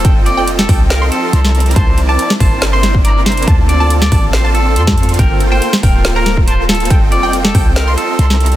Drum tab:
HH |x---x---x---o---x---x---x---xxxx|x---x---x---o---x---x---x---xxxx|x---x---x---o---x---x---x---xxxx|x---x---x---o---x---x---x---xxxx|
SD |----------o-----o---------o-----|----------o-----o---o-------o---|----------o-----o---------o-----|----------o-----o---o-------o---|
BD |o-----------o-------------------|o-----------o---------o---------|o-----------o-------------o-----|o-----------o---------o---------|

HH |x---x---x---o---x---x---x---xxx-|
SD |----------o-----o---------o-----|
BD |o-----------o-------------------|